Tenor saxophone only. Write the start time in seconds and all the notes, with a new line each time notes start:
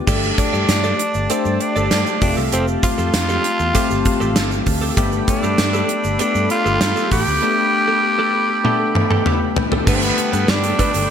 0.39 D4
1.31 C4
1.61 D4
2.22 D4
2.53 C4
2.83 F4
5.29 D4
6.21 D4
6.51 F4
7.12 G4
9.88 B3
9.95 C4
10.02 B3
10.50 D4